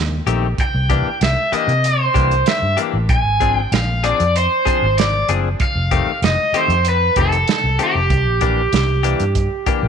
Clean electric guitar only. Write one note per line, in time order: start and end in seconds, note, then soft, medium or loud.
0.27 0.47 D#3 medium
0.27 0.46 A3 medium
0.27 0.46 C4 medium
0.27 0.46 G4 medium
0.90 1.09 E3 medium
0.90 1.09 A#3 medium
0.90 1.09 D4 medium
0.90 1.09 G4 medium
1.52 1.72 E3 soft
1.52 1.72 A#3 medium
1.52 1.72 D4 medium
1.52 1.71 G4 medium
2.14 2.35 E3 medium
2.14 2.34 A#3 medium
2.14 2.34 D4 medium
2.14 2.34 G4 medium
2.77 2.97 E3 medium
2.77 2.97 A#3 medium
2.77 2.97 D4 medium
2.77 2.96 G4 medium
3.40 3.60 F3 medium
3.40 3.60 C4 medium
3.40 3.60 D4 medium
3.40 3.59 G#4 medium
4.04 4.23 F3 medium
4.04 4.23 C4 medium
4.04 4.23 D4 medium
4.04 4.22 G#4 medium
4.65 4.86 F3 medium
4.65 4.85 C4 medium
4.65 4.85 D4 medium
4.65 4.85 G#4 medium
5.29 5.48 F3 medium
5.29 5.48 C4 medium
5.29 5.48 D4 medium
5.29 5.48 G#4 medium
5.91 6.11 D#3 medium
5.91 6.11 A3 medium
5.91 6.10 C4 medium
5.91 6.10 G4 medium
6.54 6.74 D#3 medium
6.54 6.73 A3 medium
6.54 6.73 C4 medium
6.54 6.73 G4 medium
7.17 7.36 D#3 medium
7.17 7.36 A3 medium
7.17 7.36 C4 medium
7.17 7.36 G4 medium
7.79 7.99 D#3 medium
7.79 7.99 A3 medium
7.79 7.98 C4 medium
7.79 7.98 G4 medium
8.41 8.61 E3 medium
8.41 8.61 A#3 medium
8.41 8.61 D4 medium
8.41 8.60 G4 medium
9.03 9.24 E3 medium
9.03 9.23 A#3 medium
9.03 9.23 D4 medium
9.03 9.23 G4 medium
9.67 9.86 E3 medium
9.67 9.86 A#3 medium
9.67 9.86 D4 medium
9.67 9.86 G4 medium